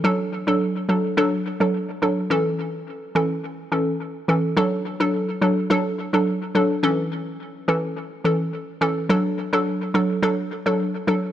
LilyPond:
\new Staff \with { instrumentName = "Synth pluck" } { \time 4/4 \key d \major \tempo 4 = 106 <fis d' a'>8. <fis d' a'>8. <fis d' a'>8 <fis d' a'>16 r8 <fis d' a'>16 r8 <fis d' a'>16 r16 | <e cis' a'>4 r8 <e cis' a'>16 r8. <e cis' a'>16 r8. <e cis' a'>8 | <fis d' a'>8. <fis d' a'>8. <fis d' a'>8 <fis d' a'>16 r8 <fis d' a'>16 r8 <fis d' a'>16 r16 | <e cis' a'>4 r8 <e cis' a'>16 r8. <e cis' a'>16 r8. <e cis' a'>8 |
<fis d' a'>8. <fis d' a'>8. <fis d' a'>8 <fis d' a'>16 r8 <fis d' a'>16 r8 <fis d' a'>16 r16 | }